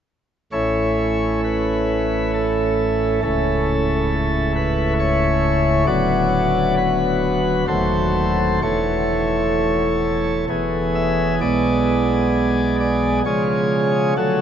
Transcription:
0.52 A1 A2 A3 C#4 E4 C#5
1.44 B4
2.34 A4
3.23 C#1 C#2 A3 C#4 E4 A4
4.56 B4
5.00 C#5
5.87 D1 D2 F#3 B3 F#4 D5
6.77 B4
7.68 D#1 D#2 F#3 A3 A4 C5
8.62 E1 E2 E3 A3 A4 C#5
10.49 E1 E2 E3 B3 G#4
10.95 E5
11.40 B1 B2 G#3 B3 G#4 D5
12.80 D5
13.26 C#3 F3 G#3 G#4 C#5
14.17 D3 F#3 A3 F#4 A4

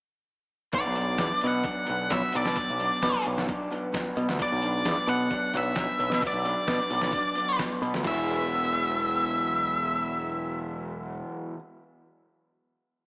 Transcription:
0.73 B1 B2 F#3 B3 D5, kick, closed hi-hat
0.86 B1
0.96 B2 F#3 D4, closed hi-hat
1.18 E2 B2 F#3 B3, kick, snare, closed hi-hat
1.41 B2 F#3, closed hi-hat
1.47 F#5
1.64 B2 F#3 D4, kick, closed hi-hat
1.86 B1 B2 F#3 B3, closed hi-hat
2.10 B1 B2 F#3 E5, kick, snare, closed hi-hat
2.32 B1 B2 F#3 B3, closed hi-hat
2.37 D5
2.45 B2, snare
2.56 B2 F#3, kick, closed hi-hat
2.70 B1
2.79 B2 F#3 D4, closed hi-hat
3.02 B2 F#3 B3, kick, snare, closed hi-hat
3.24 B1 B2 F#3, closed hi-hat
3.38 snare
3.47 B2 F#3 D4, kick, closed hi-hat
3.71 B2 F#3 B3, closed hi-hat
3.92 B2 F#3, kick, snare, closed hi-hat
4.16 B2 F#3 B3, closed hi-hat
4.29 D2, snare
4.39 B2 F#3 D5, kick, closed hi-hat
4.52 B1
4.62 B2 F#3 D4, closed hi-hat
4.85 E2 B2 F#3 B3, kick, snare, closed hi-hat
5.07 B2 F#3 F#5, closed hi-hat
5.31 B2 F#3 D4, kick, closed hi-hat
5.54 B1 B2 F#3 B3 E5, closed hi-hat
5.75 B1 B2 F#3, kick, snare, closed hi-hat
5.98 B1 B2 F#3 B3, closed hi-hat
6.10 B2, snare
6.21 B2 F#3, kick, closed hi-hat
6.27 D5
6.33 B1
6.45 B2 F#3 D4, closed hi-hat
6.67 B2 F#3 B3, kick, snare, closed hi-hat
6.90 B1 B2 F#3, closed hi-hat
7.01 snare
7.12 B2 F#3 D4, kick, closed hi-hat
7.35 B2 F#3 B3, closed hi-hat
7.58 B2 F#3, kick, snare, closed hi-hat
7.82 B2 F#3 B3, closed hi-hat
7.94 D2, snare
8.03 E1 E2 B2 E3 F#3 G#3 B3 E4, kick, crash
8.07 B3 G#4 E5

